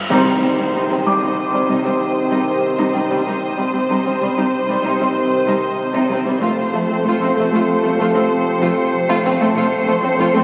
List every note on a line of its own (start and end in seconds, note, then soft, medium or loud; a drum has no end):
0.00 0.13 F5 soft
0.00 0.13 F6 soft
0.00 cymbal swell soft
0.09 0.25 C2 medium
0.09 0.25 C3 medium
0.09 3.21 C3 medium
0.09 3.21 D#3 medium
0.09 0.25 G3 medium
0.09 3.21 C4 medium
0.09 0.25 D#4 medium
0.09 3.21 G4 medium
0.09 3.22 C5 medium
0.09 6.07 C6 soft
0.09 impact soft
0.42 0.49 C2 soft
0.42 0.48 C3 soft
0.42 0.49 G3 soft
0.58 0.64 C3 soft
0.58 0.64 G3 soft
0.58 0.65 C4 soft
0.74 0.80 C2 medium
0.74 0.80 C3 medium
0.74 0.81 G3 soft
0.74 0.81 D#4 soft
0.74 6.06 D#6 soft
0.89 0.96 C3 soft
0.89 0.96 G3 soft
0.89 0.97 C4 soft
1.05 1.12 C2 soft
1.05 1.12 C3 soft
1.05 1.12 G3 soft
1.05 1.13 G3 soft
1.05 2.91 D6 soft
1.21 1.27 C3 medium
1.21 1.28 G3 medium
1.21 1.29 D#4 medium
1.53 1.59 C3 soft
1.53 1.60 G3 soft
1.68 1.75 C2 medium
1.68 1.74 C3 medium
1.68 1.75 G3 medium
1.68 1.76 D#4 medium
1.84 1.90 C3 soft
1.84 1.91 G3 soft
1.84 1.90 C4 soft
2.31 2.37 C2 medium
2.31 2.37 C3 medium
2.31 2.38 G3 soft
2.31 2.37 D#4 medium
2.78 2.85 C3 medium
2.78 2.85 G3 medium
2.78 2.85 D#4 medium
2.94 3.01 C2 soft
2.94 3.01 C3 soft
2.94 3.00 G3 soft
2.94 3.00 C4 medium
3.10 3.16 C3 soft
3.10 3.17 G3 medium
3.25 3.33 C2 medium
3.25 3.32 C3 medium
3.25 6.38 C3 medium
3.25 6.38 D#3 medium
3.25 3.33 G3 soft
3.25 6.37 C4 medium
3.25 3.32 D#4 medium
3.25 6.37 G4 medium
3.25 6.37 C5 medium
3.57 3.64 C2 soft
3.57 3.64 C3 soft
3.57 3.63 G3 soft
3.57 3.64 G3 soft
3.73 3.79 C3 soft
3.73 3.80 G3 soft
3.73 3.80 C4 soft
3.89 3.96 C2 medium
3.89 3.96 C3 soft
3.89 3.96 G3 medium
3.89 3.95 D#4 soft
4.05 4.12 C3 soft
4.05 4.11 G3 soft
4.05 4.11 C4 soft
4.21 4.27 C2 soft
4.21 4.27 C3 soft
4.21 4.27 G3 soft
4.21 4.28 G3 soft
4.37 4.43 C3 medium
4.37 4.43 G3 medium
4.37 4.43 D#4 soft
4.68 4.74 C3 soft
4.68 4.75 G3 soft
4.83 4.90 C2 medium
4.83 4.90 C3 medium
4.83 4.90 G3 medium
4.83 4.91 D#4 medium
4.99 5.06 C3 soft
4.99 5.06 G3 soft
4.99 5.07 C4 soft
5.46 5.52 C2 medium
5.46 5.53 C3 medium
5.46 5.53 G3 medium
5.46 5.54 D#4 medium
5.93 6.00 C3 medium
5.93 5.99 G3 soft
5.93 6.00 D#4 medium
6.09 6.16 C2 soft
6.09 6.16 C3 medium
6.09 6.16 G3 medium
6.09 6.17 C4 soft
6.24 6.32 C3 soft
6.24 6.31 G3 medium
6.24 6.33 G3 medium
6.40 6.47 F1 medium
6.40 6.48 F2 medium
6.40 9.38 C3 medium
6.40 9.38 F3 medium
6.40 6.46 A3 medium
6.40 9.37 C4 medium
6.40 6.48 F4 medium
6.40 9.37 A4 medium
6.40 9.51 C5 medium
6.40 10.44 C7 soft
6.72 6.79 F1 soft
6.72 6.79 F2 medium
6.72 6.79 A3 soft
6.72 6.80 A3 soft
6.88 6.95 F2 soft
6.88 6.94 A3 soft
6.88 6.97 C4 soft
7.03 7.10 F1 medium
7.03 7.11 F2 medium
7.03 7.10 A3 medium
7.03 10.44 C#7 soft
7.08 7.14 F4 medium
7.20 7.26 F2 medium
7.20 7.27 A3 soft
7.20 7.29 C4 soft
7.35 7.42 F1 soft
7.35 7.42 F2 soft
7.35 7.41 A3 medium
7.39 7.45 A3 soft
7.51 7.57 F2 medium
7.51 7.58 A3 medium
7.51 7.60 F4 medium
7.82 7.88 F2 soft
7.82 7.89 A3 medium
7.82 7.90 A3 soft
7.98 8.05 F1 medium
7.98 8.04 F2 medium
7.98 8.05 A3 medium
7.98 8.06 F4 medium
8.13 8.20 F2 soft
8.13 8.21 A3 medium
8.13 8.21 C4 medium
8.60 8.67 F1 medium
8.60 8.66 F2 medium
8.60 8.68 A3 medium
8.60 8.68 F4 medium
9.08 9.14 F2 medium
9.08 9.15 A3 medium
9.08 9.15 F4 medium
9.23 9.30 F1 medium
9.23 9.30 F2 medium
9.23 9.31 A3 medium
9.23 9.31 C4 medium
9.39 9.45 F2 medium
9.39 9.47 A3 medium
9.54 9.61 F1 medium
9.54 9.61 F2 medium
9.54 10.44 C3 medium
9.54 10.44 F3 medium
9.54 9.61 A3 medium
9.54 10.44 C4 medium
9.54 9.62 F4 medium
9.54 10.44 A4 medium
9.54 10.44 C5 medium
9.86 9.92 F1 medium
9.86 9.93 F2 medium
9.86 9.94 A3 medium
10.02 10.08 F2 medium
10.02 10.09 A3 medium
10.02 10.10 C4 medium
10.17 10.23 F1 medium
10.17 10.24 F2 medium
10.17 10.24 A3 medium
10.17 10.25 F4 medium
10.34 10.40 F2 medium
10.34 10.40 A3 soft
10.34 10.41 C4 medium